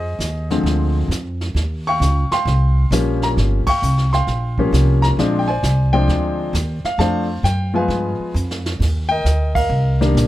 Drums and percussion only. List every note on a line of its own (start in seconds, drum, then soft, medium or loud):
0.20 snare medium
0.20 hi-hat pedal medium
0.50 snare soft
0.66 brush sweep soft
0.66 snare soft
1.11 snare medium
1.11 hi-hat pedal medium
1.41 snare soft
1.56 brush sweep soft
1.56 snare soft
2.02 snare medium
2.02 hi-hat pedal medium
2.32 snare soft
2.47 brush sweep soft
2.47 snare soft
2.92 snare medium
2.92 hi-hat pedal medium
3.22 snare soft
3.37 brush sweep soft
3.37 snare soft
3.67 kick medium
3.67 crash medium
3.82 hi-hat pedal medium
3.98 snare soft
4.13 snare soft
4.27 brush sweep soft
4.27 snare soft
4.58 kick medium
4.73 snare medium
4.73 hi-hat pedal soft
5.03 snare soft
5.19 brush sweep medium
5.19 snare soft
5.63 snare medium
5.63 hi-hat pedal medium
6.09 brush sweep soft
6.09 snare soft
6.54 snare medium
6.54 hi-hat pedal medium
6.85 snare soft
7.00 brush sweep soft
7.00 snare soft
7.45 snare medium
7.45 hi-hat pedal medium
7.90 brush sweep medium
7.90 snare soft
8.35 hi-hat pedal medium
8.51 snare medium
8.66 snare medium
8.80 brush sweep soft
8.80 kick medium
8.80 snare soft
8.80 crash medium
9.26 snare medium
9.26 hi-hat pedal medium
9.55 kick medium
9.55 crash medium
9.71 brush sweep soft
10.01 snare soft
10.17 snare medium
10.17 hi-hat pedal medium